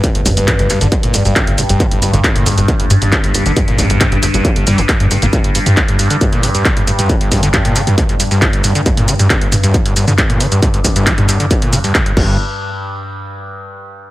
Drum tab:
CC |----------------|----------------|----------------|----------------|
HH |xxoxxxoxxxooxxox|xxoxxxoxxxoxxxox|xxoxxxoxxxooxxox|xxoxxxoxxxoxxxox|
SH |x-xxx-xxx-xxx-xx|x-xxx-xxx-xxx-xx|x-xxx-xxx-xxx-xx|x-xxx-xxx-xxx-xx|
CP |----x-x-----x---|----x-------x---|----x-x-----x---|----x-------x---|
T2 |--o-o--o-o--o-o-|-o-o--o-o--o-o--|o-o--o-o--o-o--o|o--o-o--o-o--o-o|
BD |o-o-o---o---o---|o---o---o---o---|o-o-o---o---o---|o---o---o---o---|

CC |----------------|----------------|--------------x-|----------------|
HH |xxoxxxoxxxooxxox|xxoxxxoxxxoxxxox|xxoxxxoxxxooxx--|----------------|
SH |x-xxx-xxx-xxx-xx|x-xxx-xxx-xxx-xx|x-xxx-xxx-xxx---|----------------|
CP |----x-x-----x---|----x-------x---|----x-x-----x---|----------------|
T2 |--o-o--o-o--o-o-|-o-o--o-o--o-o--|o-o--o-o--o-o---|----------------|
BD |o-o-o---o---o---|o---o---o---o---|o-o-o---o---o-o-|----------------|